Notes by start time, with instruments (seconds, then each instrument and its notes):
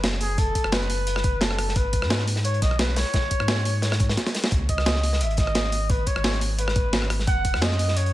Already playing: sub bass F#1
0.04 snare, closed hi-hat
0.21 flugelhorn G#4, closed hi-hat, open hi-hat
0.38 flugelhorn A4, kick, closed hi-hat
0.55 kick, closed hi-hat
0.64 sub bass F#1, cross-stick
0.72 flugelhorn B4, snare, closed hi-hat
0.82 closed hi-hat
0.90 closed hi-hat, open hi-hat
1.07 closed hi-hat
1.16 cross-stick, snare
1.24 kick, closed hi-hat
1.41 flugelhorn A4, snare, closed hi-hat
1.51 cross-stick
1.59 cross-stick, closed hi-hat, open hi-hat
1.68 snare
1.76 sub bass G#1, flugelhorn B4, kick, closed hi-hat
1.93 kick, closed hi-hat
2.02 sub bass G#2, cross-stick, snare
2.10 snare, closed hi-hat
2.19 snare
2.28 closed hi-hat, open hi-hat
2.36 snare
2.45 flugelhorn C#5, closed hi-hat
2.54 closed hi-hat
2.62 sub bass B1, flugelhorn D#5, kick, snare, closed hi-hat
2.71 cross-stick
2.79 flugelhorn B4, snare, closed hi-hat
2.96 flugelhorn C#5, snare, closed hi-hat, open hi-hat
3.14 kick, snare, closed hi-hat
3.31 kick, closed hi-hat
3.40 sub bass G#2, cross-stick
3.48 snare, closed hi-hat
3.59 closed hi-hat
3.65 closed hi-hat, open hi-hat
3.82 snare, closed hi-hat
3.92 cross-stick, snare, closed hi-hat
3.99 kick, closed hi-hat
4.09 snare, closed hi-hat
4.17 snare, closed hi-hat
4.27 snare, closed hi-hat
4.35 snare, closed hi-hat, open hi-hat
4.44 snare, closed hi-hat
4.51 sub bass C#2, kick, closed hi-hat
4.69 flugelhorn D#5, kick, closed hi-hat
4.78 cross-stick, snare
4.86 snare, closed hi-hat
4.95 snare
5.03 closed hi-hat, open hi-hat
5.13 snare
5.21 sub bass G#1, flugelhorn E5, closed hi-hat
5.31 closed hi-hat
5.37 flugelhorn D#5, kick, snare, closed hi-hat
5.47 cross-stick
5.55 snare, closed hi-hat
5.72 closed hi-hat, open hi-hat
5.90 flugelhorn B4, kick, closed hi-hat
6.07 flugelhorn C#5, kick, closed hi-hat
6.16 sub bass G#1, cross-stick
6.24 snare, closed hi-hat
6.33 closed hi-hat
6.41 closed hi-hat, open hi-hat
6.59 flugelhorn B4, closed hi-hat
6.68 cross-stick, snare
6.76 kick, closed hi-hat
6.93 snare, closed hi-hat
7.02 cross-stick
7.10 cross-stick, closed hi-hat, open hi-hat
7.19 snare
7.27 sub bass F#1, flugelhorn F#5, kick, closed hi-hat
7.45 kick, closed hi-hat
7.54 sub bass F#2, cross-stick, snare
7.62 flugelhorn D#5, snare, closed hi-hat
7.71 snare
7.79 closed hi-hat, open hi-hat
7.88 snare
7.97 flugelhorn C#5, closed hi-hat
8.06 closed hi-hat